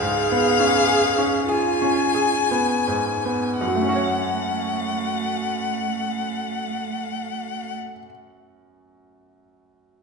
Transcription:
0.00 3.56 C#2 soft
0.00 0.47 G#2 soft
0.00 1.48 G#4 medium
0.00 1.50 F5 medium
0.32 0.76 B3 soft
0.60 1.06 C#4 soft
0.89 1.37 G#4 soft
1.18 1.68 C#4 soft
1.49 2.48 F4 medium
1.49 2.01 G#4 soft
1.49 3.60 G#5 medium
1.82 2.36 C#4 soft
2.15 2.72 G#4 soft
2.51 3.10 B3 soft
2.88 3.46 G#2 soft
3.25 3.61 B3 soft
3.60 7.76 F#2 soft
3.60 7.75 A3 soft
3.60 7.75 F#5 medium
3.68 7.83 F#3 soft
3.75 7.90 A3 soft
3.82 7.97 C#4 soft
3.89 8.04 F#4 soft
3.96 8.11 C#5 soft

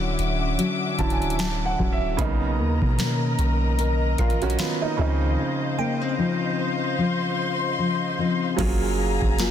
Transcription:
0.00 0.16 D1 loud
0.00 0.94 D3 medium
0.00 2.18 D3 medium
0.00 0.58 F#3 medium
0.00 0.94 F#3 medium
0.00 0.95 C#4 medium
0.00 1.79 C#4 medium
0.00 2.15 C#4 medium
0.00 0.96 E4 medium
0.00 1.78 E4 medium
0.00 0.83 E5 medium
0.00 2.15 E5 medium
0.00 2.15 F#5 medium
0.00 2.15 D6 medium
0.19 0.57 D1 loud
0.19 closed hi-hat medium
0.58 1.38 F#3 medium
0.58 closed hi-hat medium
0.98 1.75 D1 loud
0.98 2.18 D3 medium
0.98 2.19 F#3 medium
0.98 2.19 C#4 medium
0.98 2.19 E4 medium
0.98 1.11 A5 medium
0.98 kick medium
0.98 closed hi-hat soft
1.10 1.37 G#5 medium
1.10 closed hi-hat soft
1.22 closed hi-hat soft
1.30 closed hi-hat soft
1.38 1.78 F#3 medium
1.38 1.64 A5 medium
1.38 snare loud
1.38 closed hi-hat medium
1.66 1.90 F#5 medium
1.78 2.17 D1 loud
1.78 2.98 F#3 medium
1.78 2.58 C#4 medium
1.78 2.28 E4 medium
1.78 kick medium
1.93 2.17 E5 medium
2.17 2.60 B1 loud
2.17 4.94 C#3 medium
2.17 4.14 A#3 medium
2.17 4.15 B3 medium
2.17 4.96 A#4 medium
2.17 8.54 D#5 medium
2.17 4.96 A#5 medium
2.17 kick loud
2.17 closed hi-hat medium
2.21 4.16 D#4 medium
2.58 2.81 D#2 loud
2.58 2.98 A#3 medium
2.82 3.36 B2 loud
2.82 kick medium
2.98 3.78 D#3 medium
2.98 5.08 A#3 medium
2.98 6.04 C#4 medium
2.98 snare loud
2.98 closed hi-hat medium
3.39 4.15 B1 loud
3.39 closed hi-hat medium
3.78 4.58 D#3 medium
3.78 closed hi-hat medium
4.18 4.57 A#1 loud
4.18 4.41 F4 medium
4.18 4.41 A#4 medium
4.18 5.35 F5 medium
4.18 kick medium
4.18 closed hi-hat soft
4.30 closed hi-hat soft
4.42 4.58 C#4 medium
4.42 4.58 F#4 medium
4.42 closed hi-hat soft
4.50 closed hi-hat soft
4.58 5.41 D#3 medium
4.58 4.81 B3 medium
4.58 4.81 F4 medium
4.58 snare loud
4.58 closed hi-hat medium
4.82 5.20 A#3 soft
4.82 4.99 D#4 medium
4.97 5.37 C#2 loud
4.97 8.14 C#3 medium
4.97 5.37 C#3 medium
4.97 8.14 F3 medium
4.97 8.15 C4 medium
4.97 8.55 C5 medium
4.97 8.55 F5 medium
5.01 8.16 D#4 medium
5.38 8.58 C#3 medium
5.78 6.01 A#3 medium
5.78 7.63 G5 medium
6.01 6.17 C4 medium
6.18 6.98 F3 medium
6.18 8.18 C4 medium
6.18 8.19 D#4 medium
6.59 8.57 C6 medium
6.98 7.78 F3 medium
7.78 8.18 F3 medium
8.19 8.58 F3 medium
8.19 8.68 C4 medium
8.19 8.68 D#4 medium
8.57 9.19 F#1 loud
8.57 9.51 F#3 medium
8.57 9.51 A#3 medium
8.57 9.51 C#4 medium
8.57 9.51 F4 medium
8.57 9.51 G#4 medium
8.57 9.38 G#4 medium
8.57 9.51 F5 medium
8.57 9.51 G#5 medium
8.57 9.51 A#5 medium
8.57 kick loud
8.57 closed hi-hat medium
8.57 crash loud
8.61 9.51 G#4 medium
9.22 9.51 F#1 loud
9.22 kick loud
9.38 9.51 A#3 medium
9.38 9.51 F4 medium
9.38 9.51 G#4 medium
9.38 snare loud
9.38 closed hi-hat medium

